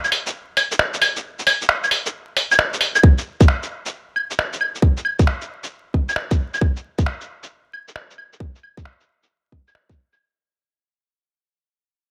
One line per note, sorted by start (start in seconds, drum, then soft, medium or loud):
0.04 claves soft
0.04 shaker soft
0.12 open hi-hat medium
0.27 shaker medium
0.57 open hi-hat medium
0.57 claves medium
0.72 shaker medium
0.79 finger snap loud
0.94 shaker soft
1.02 open hi-hat medium
1.02 claves medium
1.16 shaker medium
1.39 shaker soft
1.47 open hi-hat medium
1.47 claves medium
1.62 shaker medium
1.69 finger snap loud
1.84 claves soft
1.84 shaker soft
1.91 open hi-hat medium
2.06 shaker medium
2.37 open hi-hat medium
2.52 claves medium
2.52 shaker medium
2.59 finger snap loud
2.74 shaker soft
2.81 open hi-hat medium
2.95 claves medium
2.95 shaker medium
3.03 kick loud
3.18 shaker soft
3.41 kick loud
3.41 shaker medium
3.48 finger snap loud
3.63 shaker soft
3.86 shaker medium
4.16 claves soft
4.31 shaker medium
4.39 finger snap loud
4.53 shaker soft
4.61 claves medium
4.75 shaker medium
4.82 kick loud
4.97 shaker soft
5.05 claves medium
5.19 kick loud
5.19 shaker medium
5.27 finger snap loud
5.42 shaker soft
5.64 shaker medium
5.94 kick medium
6.09 claves medium
6.09 shaker medium
6.16 finger snap loud
6.31 kick loud
6.31 shaker soft
6.54 claves medium
6.54 shaker medium
6.61 kick loud
6.76 shaker soft
6.99 kick loud
6.99 shaker soft
7.06 finger snap loud
7.21 shaker soft
7.43 shaker medium
7.73 claves soft
7.88 shaker medium
7.96 finger snap loud
8.11 shaker soft
8.18 claves medium
8.33 shaker medium
8.40 kick loud
8.55 shaker soft
8.63 claves soft
8.77 kick loud
8.77 shaker soft
8.85 finger snap loud
9.00 shaker soft
9.23 shaker soft
9.52 kick medium
9.68 claves medium
9.68 shaker medium
9.75 finger snap loud
9.90 kick loud
9.90 shaker soft
10.13 claves medium
10.13 shaker medium